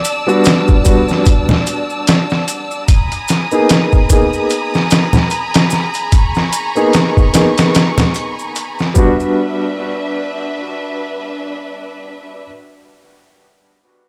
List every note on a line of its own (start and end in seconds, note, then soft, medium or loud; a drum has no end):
0.00 0.21 G3 medium
0.00 0.22 B3 medium
0.00 0.23 D4 medium
0.00 0.23 F#4 medium
0.00 2.84 D5 medium
0.00 2.85 A5 medium
0.00 2.84 E6 medium
0.04 closed hi-hat medium
0.04 maracas medium
0.27 0.81 G3 medium
0.27 0.81 B3 medium
0.27 0.81 D4 medium
0.27 0.81 F#4 medium
0.27 maracas soft
0.44 snare loud
0.44 closed hi-hat medium
0.44 maracas soft
0.68 kick medium
0.68 maracas soft
0.83 2.85 G3 medium
0.83 2.85 B3 medium
0.83 2.86 D4 medium
0.83 2.87 F#4 medium
0.83 kick medium
0.83 closed hi-hat medium
0.83 maracas medium
1.08 snare soft
1.08 maracas soft
1.25 kick medium
1.25 closed hi-hat medium
1.25 maracas soft
1.49 snare medium
1.49 low conga medium
1.49 maracas soft
1.67 closed hi-hat medium
1.67 maracas medium
1.90 maracas soft
2.07 snare loud
2.07 closed hi-hat medium
2.07 maracas soft
2.30 snare soft
2.30 maracas soft
2.48 closed hi-hat medium
2.48 maracas medium
2.71 maracas soft
2.88 8.93 G#5 medium
2.88 8.92 A#5 medium
2.88 8.92 B5 medium
2.88 6.09 D#6 medium
2.88 kick loud
2.88 closed hi-hat medium
2.88 maracas soft
3.12 closed hi-hat soft
3.12 maracas soft
3.28 snare soft
3.28 closed hi-hat medium
3.28 maracas medium
3.51 4.05 A#3 medium
3.51 4.05 B3 medium
3.51 4.06 D#4 medium
3.51 4.06 G#4 medium
3.51 maracas soft
3.69 snare loud
3.69 closed hi-hat medium
3.69 maracas soft
3.92 kick medium
3.92 maracas soft
4.08 6.70 A#3 medium
4.08 6.70 B3 medium
4.08 6.71 D#4 medium
4.08 6.72 G#4 medium
4.08 kick medium
4.08 closed hi-hat medium
4.08 maracas medium
4.33 maracas soft
4.50 closed hi-hat medium
4.50 maracas soft
4.74 snare soft
4.74 maracas soft
4.90 snare medium
4.90 closed hi-hat medium
4.90 maracas medium
5.13 snare soft
5.13 low conga medium
5.13 maracas soft
5.30 closed hi-hat medium
5.30 maracas soft
5.54 snare loud
5.54 closed hi-hat medium
5.54 maracas soft
5.70 snare soft
5.70 maracas medium
5.94 closed hi-hat medium
5.94 maracas soft
6.11 8.93 C#6 medium
6.11 kick medium
6.11 closed hi-hat medium
6.11 maracas soft
6.35 snare soft
6.35 maracas soft
6.53 closed hi-hat medium
6.53 maracas medium
6.75 7.29 A#3 medium
6.75 7.30 B3 medium
6.75 7.30 D#4 medium
6.75 7.30 G#4 medium
6.75 maracas soft
6.93 snare medium
6.93 closed hi-hat medium
6.93 maracas soft
7.17 kick medium
7.17 maracas soft
7.32 8.92 A#3 medium
7.32 8.92 B3 medium
7.32 8.93 D#4 medium
7.32 8.93 G#4 medium
7.32 snare medium
7.32 closed hi-hat medium
7.32 maracas medium
7.58 snare medium
7.58 closed hi-hat medium
7.58 maracas soft
7.74 snare medium
7.74 closed hi-hat medium
7.74 maracas soft
7.98 snare medium
7.98 closed hi-hat medium
7.98 low conga medium
7.98 maracas soft
8.14 closed hi-hat medium
8.14 maracas medium
8.39 maracas soft
8.55 closed hi-hat medium
8.55 maracas soft
8.79 snare soft
8.79 maracas soft
8.94 12.43 G3 medium
8.94 12.44 B3 medium
8.94 12.45 D4 medium
8.94 12.46 D4 medium
8.94 12.44 B4 medium
8.94 12.44 E5 medium
8.94 kick medium
8.94 maracas medium
8.99 12.47 F#4 medium
9.20 maracas soft